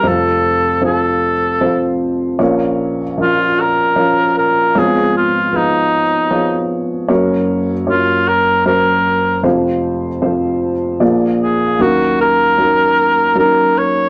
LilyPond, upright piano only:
<<
  \new Staff \with { instrumentName = "Upright piano" } { \time 3/4 \key f \phrygian \tempo 4 = 77 <f c' a' c''>4 <f c' a' c''>8 r8 <f c' a' c''>4 | <f des' bes' des''>4 <f des' bes' ees''>8 r8 <f des' bes' des''>4 | <f ces' aes' des''>4 <f ces' aes' ces''>8 r8 <f ces' aes' des''>4 | <ges des' bes' des''>4 <ges des' bes' des''>8 r8 <ges des' bes' c''>4 |
<f c' a' c''>4 <f c' a' c''>8 r8 <f bes aes' d''>4 | \key ees \dorian <ges des' ees' bes'>4 <ges des' ees' bes'>8 r8 <ges des' ees' bes'>4 | }
  \new Staff \with { instrumentName = "Upright piano" } { \clef bass \time 3/4 \key f \phrygian <f,, f,>2. | <bes,, bes,>2. | <aes,, aes,>2. | <ges,, ges,>2. |
<f,, f,>2 <bes,, bes,>4 | \key ees \dorian <ees, ees>2. | }
>>